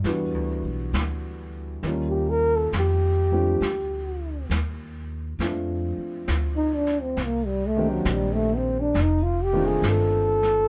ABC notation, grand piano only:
X:1
M:4/4
L:1/8
Q:"Swing" 1/4=67
K:Dphr
V:1 name="Grand piano"
[=E,G,=B,D_G]3 z [_E,=G,_B,_DF] z2 [F,A,C=D=G] | z4 [F,A,CDF] z3 | z [E,B,CDG] z3 [E,A,CDF]3 |]